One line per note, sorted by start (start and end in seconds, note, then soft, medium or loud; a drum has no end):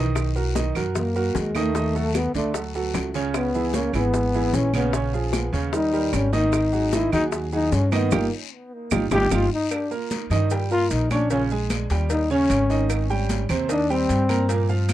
0.00 0.69 B1 loud
0.00 0.28 D#3 medium
0.00 0.16 E3 medium
0.00 0.29 D#4 medium
0.00 0.29 D#5 medium
0.15 high bongo medium
0.15 high conga soft
0.15 long guiro medium
0.15 claves medium
0.15 maracas medium
0.35 0.52 F#3 medium
0.35 0.52 F#4 medium
0.35 0.52 A#4 medium
0.35 high bongo soft
0.35 high conga soft
0.35 maracas soft
0.55 0.72 D#3 medium
0.55 0.72 D#4 medium
0.55 0.72 D#5 medium
0.55 high bongo medium
0.55 high conga medium
0.55 short guiro medium
0.55 maracas medium
0.75 1.31 F#2 medium
0.75 1.08 F#3 medium
0.75 1.09 F#4 medium
0.75 1.09 A#4 medium
0.75 high conga soft
0.75 low conga medium
0.75 short guiro medium
0.75 claves medium
0.75 maracas soft
0.95 1.38 A#3 medium
0.95 high bongo medium
0.95 high conga soft
0.95 low conga medium
0.95 long guiro medium
0.95 maracas medium
1.15 1.48 F#3 medium
1.15 1.48 F#4 medium
1.15 1.48 A#4 medium
1.15 high bongo soft
1.15 high conga soft
1.15 maracas soft
1.35 2.29 D#2 medium
1.35 1.57 G#3 medium
1.35 high bongo soft
1.35 low bongo medium
1.35 high conga soft
1.35 short guiro medium
1.35 maracas medium
1.55 1.72 D#3 medium
1.55 2.17 A3 medium
1.55 1.72 D#4 medium
1.55 1.72 D#5 medium
1.55 high bongo soft
1.55 high conga medium
1.55 short guiro medium
1.55 claves medium
1.55 maracas soft
1.75 1.92 D#3 medium
1.75 1.92 D#4 medium
1.75 1.92 D#5 medium
1.75 high bongo medium
1.75 long guiro medium
1.75 maracas medium
1.95 2.28 F#3 medium
1.95 2.28 F#4 medium
1.95 2.28 A4 medium
1.95 high bongo soft
1.95 high conga soft
1.95 maracas soft
2.14 2.35 B3 loud
2.14 high bongo medium
2.14 high conga loud
2.14 short guiro medium
2.14 claves medium
2.14 maracas medium
2.34 2.90 D2 medium
2.34 2.52 D3 medium
2.34 2.54 A3 medium
2.34 2.52 D4 medium
2.34 2.52 D5 medium
2.34 high conga soft
2.34 short guiro medium
2.34 maracas soft
2.54 2.71 F#3 medium
2.54 2.71 F#4 medium
2.54 2.72 A4 medium
2.54 high bongo medium
2.54 high conga soft
2.54 long guiro medium
2.54 maracas medium
2.74 3.08 F#3 medium
2.74 3.08 F#4 medium
2.74 3.08 A4 medium
2.74 high bongo soft
2.74 high conga soft
2.74 maracas soft
2.94 3.88 C#2 medium
2.94 high bongo soft
2.94 low bongo medium
2.94 high conga soft
2.94 short guiro medium
2.94 claves medium
2.94 maracas medium
3.14 3.47 C#3 medium
3.14 3.48 C#4 medium
3.14 3.48 C#5 medium
3.14 high bongo soft
3.14 short guiro medium
3.14 maracas soft
3.34 3.77 B3 medium
3.34 high bongo medium
3.34 high conga soft
3.34 long guiro medium
3.34 claves medium
3.34 maracas medium
3.54 3.71 E3 medium
3.54 3.71 E4 medium
3.54 3.71 G#4 medium
3.54 high bongo soft
3.54 high conga soft
3.54 maracas soft
3.74 3.91 C#3 medium
3.74 3.94 A#3 medium
3.74 3.91 C#4 medium
3.74 3.91 C#5 medium
3.74 high bongo medium
3.74 high conga medium
3.74 short guiro medium
3.74 maracas medium
3.93 4.50 G#1 medium
3.93 4.27 E3 medium
3.93 4.56 B3 medium
3.93 4.27 E4 medium
3.93 4.28 G#4 medium
3.93 high conga soft
3.93 low conga medium
3.93 short guiro medium
3.93 claves medium
3.93 maracas soft
4.14 high bongo medium
4.14 high conga soft
4.14 long guiro medium
4.14 maracas medium
4.33 4.67 E3 medium
4.33 4.67 E4 medium
4.33 4.67 G#4 medium
4.33 high bongo soft
4.33 high conga soft
4.33 maracas soft
4.53 5.47 A#1 medium
4.53 4.74 C#4 loud
4.53 high bongo soft
4.53 low bongo medium
4.53 high conga soft
4.53 short guiro medium
4.53 maracas medium
4.73 4.91 C#3 medium
4.73 4.93 B3 medium
4.73 4.91 C#4 medium
4.73 4.91 C#5 medium
4.73 high bongo soft
4.73 high conga medium
4.73 short guiro medium
4.73 claves medium
4.73 maracas soft
4.93 5.10 C#3 medium
4.93 5.10 C#4 medium
4.93 5.11 C#5 medium
4.93 high bongo medium
4.93 high conga soft
4.93 long guiro medium
4.93 maracas medium
5.13 5.46 F3 medium
5.13 5.46 F4 medium
5.13 5.47 G#4 medium
5.13 high bongo soft
5.13 high conga soft
5.13 maracas soft
5.33 high bongo medium
5.33 high conga medium
5.33 short guiro medium
5.33 claves medium
5.33 maracas medium
5.52 6.09 D#2 medium
5.52 5.70 C#3 medium
5.52 5.70 C#4 medium
5.52 5.70 C#5 medium
5.52 high conga soft
5.52 short guiro medium
5.52 maracas soft
5.73 5.90 G3 medium
5.73 6.16 D#4 loud
5.73 5.90 G4 medium
5.73 5.90 A#4 medium
5.73 high bongo medium
5.73 high conga soft
5.73 long guiro medium
5.73 maracas medium
5.93 6.26 G3 medium
5.93 6.26 G4 medium
5.93 6.26 A#4 medium
5.93 high bongo soft
5.93 high conga soft
5.93 maracas soft
6.13 7.07 G#1 loud
6.13 6.34 C#4 medium
6.13 high bongo soft
6.13 low bongo medium
6.13 high conga soft
6.13 short guiro medium
6.13 claves medium
6.13 maracas medium
6.33 6.66 D#3 loud
6.33 6.66 D#4 loud
6.33 6.95 D#4 medium
6.33 6.66 D#5 medium
6.33 high bongo soft
6.33 high conga medium
6.33 short guiro medium
6.33 maracas soft
6.53 high bongo medium
6.53 high conga soft
6.53 long guiro medium
6.53 claves medium
6.53 maracas medium
6.73 6.89 F#3 medium
6.73 6.89 F#4 medium
6.73 6.89 G#4 medium
6.73 high bongo soft
6.73 high conga soft
6.73 maracas soft
6.92 7.09 D#3 medium
6.92 7.09 D#4 medium
6.92 7.13 E4 medium
6.92 7.09 D#5 medium
6.92 high bongo medium
6.92 high conga medium
6.92 short guiro medium
6.92 maracas medium
7.12 7.68 D#2 medium
7.12 7.45 F#3 medium
7.12 7.25 D#4 loud
7.12 7.46 F#4 medium
7.12 7.46 G#4 medium
7.12 high conga soft
7.12 low conga loud
7.12 short guiro medium
7.12 claves medium
7.12 maracas soft
7.32 high bongo medium
7.32 high conga soft
7.32 long guiro medium
7.32 maracas medium
7.52 7.85 F#3 medium
7.52 7.76 D#4 loud
7.52 7.85 F#4 medium
7.52 7.86 G#4 medium
7.52 high bongo soft
7.52 high conga soft
7.52 maracas soft
7.72 8.09 G2 loud
7.72 7.95 C#4 medium
7.72 high bongo soft
7.72 low bongo medium
7.72 high conga soft
7.72 short guiro medium
7.72 maracas medium
7.92 8.08 D#3 loud
7.92 8.15 B3 medium
7.92 8.09 D#4 loud
7.92 8.09 D#5 loud
7.92 high bongo soft
7.92 high conga medium
7.92 short guiro medium
7.92 claves medium
7.92 maracas soft
8.11 8.27 G1 medium
8.11 8.33 A#3 medium
8.11 8.25 D#4 loud
8.11 8.25 F4 loud
8.11 8.25 G4 loud
8.11 low bongo loud
8.11 high conga loud
8.11 long guiro loud
8.11 claves loud
8.11 maracas medium
8.91 9.06 G1 loud
8.91 9.05 D#4 medium
8.91 9.05 F4 medium
8.91 9.05 G4 medium
8.91 low bongo medium
8.91 high conga loud
8.91 long guiro loud
8.91 claves loud
8.91 maracas loud
9.11 9.26 G1 loud
9.11 9.25 D#4 loud
9.11 9.25 F4 loud
9.11 9.25 G4 loud
9.11 9.35 G4 loud
9.11 low bongo loud
9.11 high conga loud
9.11 long guiro loud
9.11 claves loud
9.11 maracas loud
9.31 9.46 G1 loud
9.31 9.44 D#4 loud
9.31 9.44 F4 loud
9.31 9.53 F4 loud
9.31 9.44 G4 loud
9.31 low bongo loud
9.31 high conga medium
9.31 long guiro loud
9.31 claves loud
9.31 maracas loud
9.53 9.74 D#4 loud
9.71 9.92 D4 medium
9.71 cowbell loud
9.71 high conga soft
9.71 long guiro medium
9.71 claves medium
9.71 maracas medium
9.91 10.24 A#3 medium
9.91 10.24 A#4 medium
9.91 10.24 A#5 medium
9.91 high conga soft
9.91 maracas soft
10.11 cowbell medium
10.11 high conga medium
10.11 short guiro medium
10.11 maracas medium
10.30 10.86 G2 medium
10.30 10.48 D#3 medium
10.30 10.48 D#4 medium
10.30 10.48 D#5 medium
10.30 high conga soft
10.30 low conga medium
10.30 short guiro medium
10.30 claves medium
10.30 maracas soft
10.50 10.68 G3 medium
10.50 10.68 G4 medium
10.50 10.68 G5 medium
10.50 cowbell loud
10.50 high conga soft
10.50 long guiro medium
10.50 maracas medium
10.70 11.04 A#3 medium
10.70 10.93 F4 loud
10.70 11.04 A#4 medium
10.70 11.04 A#5 medium
10.70 high conga soft
10.70 maracas soft
10.90 11.84 A#1 medium
10.90 11.11 D#4 loud
10.90 cowbell medium
10.90 high conga soft
10.90 short guiro medium
10.90 maracas medium
11.10 11.27 C#4 medium
11.10 11.30 D4 medium
11.10 11.28 C#5 medium
11.10 11.28 C#6 medium
11.10 cowbell medium
11.10 high conga medium
11.10 short guiro medium
11.10 claves medium
11.10 maracas soft
11.30 11.47 C#3 medium
11.30 11.47 C#4 medium
11.30 11.43 C#4 medium
11.30 11.48 C#5 medium
11.30 cowbell loud
11.30 long guiro medium
11.30 maracas medium
11.50 11.84 G#3 medium
11.50 11.84 G#4 medium
11.50 11.84 G#5 medium
11.50 high conga soft
11.50 maracas soft
11.70 cowbell medium
11.70 high conga medium
11.70 short guiro medium
11.70 claves medium
11.70 maracas medium
11.90 12.46 D#2 loud
11.90 12.23 G3 medium
11.90 12.24 G4 medium
11.90 12.24 G5 medium
11.90 cowbell medium
11.90 high conga soft
11.90 short guiro medium
11.90 maracas soft
12.10 12.30 D#4 medium
12.10 cowbell loud
12.10 high conga soft
12.10 long guiro medium
12.10 maracas medium
12.30 12.63 C#3 medium
12.30 12.63 C#4 medium
12.30 12.87 C#4 loud
12.30 12.63 C#5 medium
12.30 high conga soft
12.30 maracas soft
12.50 13.44 G#1 loud
12.50 cowbell medium
12.50 high conga soft
12.50 short guiro medium
12.50 claves medium
12.50 maracas medium
12.70 13.03 D#3 medium
12.70 13.03 D#4 medium
12.70 13.03 D#5 medium
12.70 short guiro medium
12.70 maracas soft
12.90 cowbell loud
12.90 high conga soft
12.90 long guiro medium
12.90 claves medium
12.90 maracas medium
13.10 13.43 G3 medium
13.10 13.43 G4 medium
13.10 13.43 G5 medium
13.10 high conga soft
13.10 maracas soft
13.29 cowbell medium
13.29 high conga medium
13.29 short guiro medium
13.29 maracas medium
13.49 14.05 D#2 medium
13.49 13.66 C3 medium
13.49 13.66 C4 medium
13.49 13.66 C5 medium
13.49 high conga soft
13.49 low conga medium
13.49 short guiro medium
13.49 claves medium
13.49 maracas soft
13.69 13.86 D#3 medium
13.69 13.92 D4 loud
13.69 13.86 D#4 medium
13.69 13.86 D#5 medium
13.69 cowbell loud
13.69 high conga soft
13.69 long guiro medium
13.69 maracas medium
13.90 14.22 G3 medium
13.90 14.50 C4 loud
13.90 14.22 G4 medium
13.90 14.23 G5 medium
13.90 high conga soft
13.90 maracas soft
14.09 14.93 G2 loud
14.09 cowbell medium
14.09 high conga soft
14.09 short guiro medium
14.09 maracas medium
14.29 14.46 A#3 medium
14.29 14.46 A#4 medium
14.29 14.46 A#5 medium
14.29 cowbell medium
14.29 high conga medium
14.29 short guiro medium
14.29 claves medium
14.29 maracas soft
14.49 14.66 A#2 medium
14.49 14.66 A#3 medium
14.49 14.66 A#4 medium
14.49 cowbell loud
14.49 long guiro medium
14.49 maracas medium
14.69 14.93 F3 medium
14.69 14.93 F4 medium
14.69 14.93 F5 medium
14.69 high conga soft
14.69 maracas soft
14.89 cowbell medium
14.89 high conga medium
14.89 short guiro medium
14.89 claves medium
14.89 maracas medium